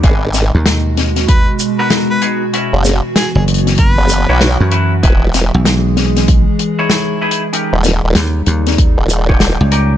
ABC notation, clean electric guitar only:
X:1
M:4/4
L:1/16
Q:"Swing 16ths" 1/4=96
K:G#m
V:1 name="Clean electric guitar"
[B,DFG] z8 z2 [B,DFA]3 [B,DFG] z | [CEFB] z8 z2 [CEFc]3 [CEFB] z | [DEGB] z8 z2 [DEGc]3 [DEGB] z | [CD=GA] z8 z2 [CDGc]3 [CDGA] z |]